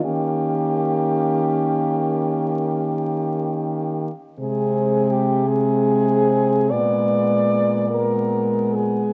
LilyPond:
<<
  \new Staff \with { instrumentName = "French horn" } { \time 12/8 \key ees \major \tempo 4. = 54 g'1~ g'4. r8 | aes'4 g'8 aes'4. d''4. bes'4 aes'8 | }
  \new Staff \with { instrumentName = "French horn" } { \time 12/8 \key ees \major des'1~ des'4. r8 | c'4. c'4. ces'4. ces'4. | }
  \new Staff \with { instrumentName = "French horn" } { \clef bass \time 12/8 \key ees \major bes1~ bes4. r8 | aes4. aes4. aes4. aes4. | }
  \new Staff \with { instrumentName = "French horn" } { \clef bass \time 12/8 \key ees \major ees1~ ees4. r8 | c2. bes,2. | }
>>